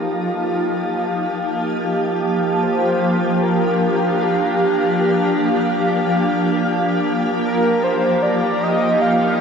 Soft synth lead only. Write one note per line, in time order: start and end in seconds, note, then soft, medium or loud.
0.00 0.24 G4 medium
0.23 1.42 F4 medium
1.84 2.65 G4 medium
2.63 3.42 C5 loud
3.43 4.25 A#4 medium
4.23 6.23 G4 medium
7.47 7.85 A#4 medium
7.84 8.24 C5 medium
8.22 8.65 D5 medium
8.63 9.03 D#5 medium
9.02 9.41 F5 medium